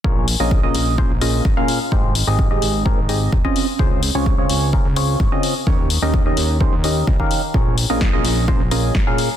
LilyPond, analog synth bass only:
\new Staff \with { instrumentName = "Analog synth bass" } { \clef bass \time 4/4 \key bes \dorian \tempo 4 = 128 bes,,8. bes,,8. bes,,8. bes,,8. aes,,16 r8. | aes,,8. aes,,8. aes,,8. aes,,8. ees,,16 r8. | des,8. des,8. des,8. des,8. aes,,16 r8. | ees,8. ees,8. ees,8. ees,8. des,16 r8. |
bes,,8. bes,,8. bes,,8. bes,,8. aes,,16 r8. | }